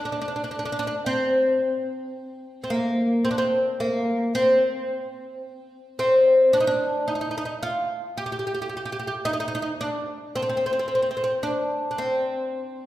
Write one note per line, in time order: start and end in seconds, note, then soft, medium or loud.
0.05 0.11 D4 medium
0.12 0.19 D4 medium
0.21 0.27 D4 medium
0.28 0.35 D4 medium
0.36 0.42 D4 medium
0.44 0.50 D4 medium
0.51 0.57 D4 medium
0.59 0.64 D4 medium
0.65 0.71 D4 medium
0.72 0.78 D4 medium
0.79 0.86 D4 medium
0.87 0.94 D4 medium
1.06 2.62 C4 medium
2.64 2.71 C4 medium
2.70 3.27 A#3 medium
3.25 3.30 C4 medium
3.31 3.38 D4 medium
3.38 3.80 C4 medium
3.80 4.35 A#3 medium
4.35 5.98 C4 loud
5.99 6.55 C4 medium
6.53 6.60 D4 loud
6.60 6.67 D#4 medium
6.67 7.07 D4 medium
7.08 7.14 D#4 medium
7.15 7.20 D#4 medium
7.21 7.29 D#4 medium
7.31 7.36 D#4 medium
7.38 7.44 D#4 medium
7.45 7.53 D#4 medium
7.63 8.17 F4 medium
8.17 8.24 G4 medium
8.26 8.31 G4 medium
8.32 8.38 G4 medium
8.39 8.46 G4 medium
8.47 8.53 G4 medium
8.54 8.61 G4 medium
8.62 8.68 G4 medium
8.69 8.76 G4 soft
8.77 8.83 G4 medium
8.85 8.91 G4 medium
8.92 8.98 G4 medium
8.99 9.06 G4 medium
9.07 9.14 G4 medium
9.25 9.32 D#4 loud
9.33 9.39 D#4 medium
9.40 9.47 D#4 medium
9.48 9.54 D#4 medium
9.55 9.61 D#4 medium
9.62 9.70 D#4 medium
9.81 10.35 D4 medium
10.36 10.41 C4 medium
10.42 10.48 C4 medium
10.49 10.56 C4 medium
10.57 10.64 C4 medium
10.66 10.71 C4 medium
10.73 10.78 C4 medium
10.79 10.87 C4 medium
10.88 10.94 C4 medium
10.95 11.01 C4 medium
11.02 11.10 C4 medium
11.11 11.16 C4 medium
11.17 11.22 C4 medium
11.24 11.32 C4 medium
11.43 11.90 D4 medium
11.91 11.98 D4 medium
11.98 12.86 C4 medium